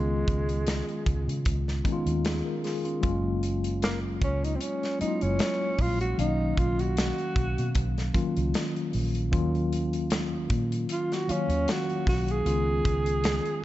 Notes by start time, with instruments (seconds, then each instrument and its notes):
Already playing: fingered electric bass C#2, tine electric piano D#3 G#3 B3 C#4 F4, tenor saxophone G#3
0.28 fingered electric bass C#2, kick, closed hi-hat
0.49 closed hi-hat
0.67 snare, closed hi-hat
0.89 closed hi-hat
1.06 fingered electric bass C#2, kick, closed hi-hat
1.28 fingered electric bass C#3, closed hi-hat
1.45 fingered electric bass C#2, kick, closed hi-hat
1.68 snare
1.84 tine electric piano D#3 G#3 B3 C#4 D#4, kick, closed hi-hat
1.92 tine electric piano F4
2.06 fingered electric bass D#2, closed hi-hat
2.25 tine electric piano F4 G#4, snare, closed hi-hat
2.45 tine electric piano A#4
2.64 tine electric piano F4 G#4, snare, open hi-hat
2.85 tine electric piano C#4 F4, closed hi-hat
3.01 fingered electric bass F#1, tine electric piano F#3 G#3 A#3 C#4 F4, kick, closed hi-hat
3.43 closed hi-hat
3.64 closed hi-hat
3.82 tenor saxophone A#3, snare, closed hi-hat
4.22 fingered electric bass C#2, tenor saxophone C#4, kick, closed hi-hat
4.44 tenor saxophone D#4, closed hi-hat
4.56 tenor saxophone C4
4.61 tenor saxophone C#4, closed hi-hat
4.83 snare, closed hi-hat
4.99 tine electric piano F#3 G#3 A#3 C#4 E4, tenor saxophone D#4, muted fingered electric bass stroke, closed hi-hat
5.08 tine electric piano F4
5.21 fingered electric bass F#1, tenor saxophone C#4, closed hi-hat
5.39 snare, closed hi-hat
5.78 fingered electric bass A#1, tenor saxophone F4, kick, open hi-hat
6.01 tenor saxophone F#4, closed hi-hat
6.18 fingered electric bass B1, tine electric piano D#3 F#3 A#3 C#4 F5, tenor saxophone D#4, closed hi-hat
6.57 fingered electric bass B1, tenor saxophone F4, kick, closed hi-hat
6.79 tenor saxophone F#4, closed hi-hat
6.97 snare, closed hi-hat
7.18 closed hi-hat
7.36 fingered electric bass B1, kick, closed hi-hat
7.58 fingered electric bass B2, closed hi-hat
7.75 fingered electric bass B1, kick, closed hi-hat
7.98 snare, closed hi-hat
8.14 tine electric piano D#3 F#3 A#3 C#4 F4, kick, closed hi-hat
8.37 fingered electric bass C#2, closed hi-hat
8.54 snare, closed hi-hat
8.76 closed hi-hat
8.93 fingered electric bass A#1, open hi-hat
9.15 closed hi-hat
9.31 fingered electric bass D#2, tine electric piano D#3 F#3 A#3 C#4 F4, kick, closed hi-hat
9.55 closed hi-hat
9.73 closed hi-hat
9.93 closed hi-hat
10.10 snare, closed hi-hat
10.50 fingered electric bass A#2, kick, closed hi-hat
10.72 closed hi-hat
10.89 tenor saxophone F4, closed hi-hat
11.12 tenor saxophone F#4, snare, closed hi-hat
11.27 tine electric piano D#3 F#3 A#3 C#4 F5, muted fingered electric bass stroke, closed hi-hat
11.32 tenor saxophone C#4
11.49 fingered electric bass D#2, closed hi-hat
11.68 tenor saxophone F#4, snare, closed hi-hat
11.89 closed hi-hat
12.07 fingered electric bass B1, tenor saxophone F#4, kick, snare, open hi-hat
12.28 tenor saxophone G#4, closed hi-hat
12.45 fingered electric bass C#2, tine electric piano D#3 G#3 B3 C#4 F4, closed hi-hat
12.85 fingered electric bass C#2, kick, closed hi-hat
13.06 closed hi-hat
13.24 snare, closed hi-hat
13.46 closed hi-hat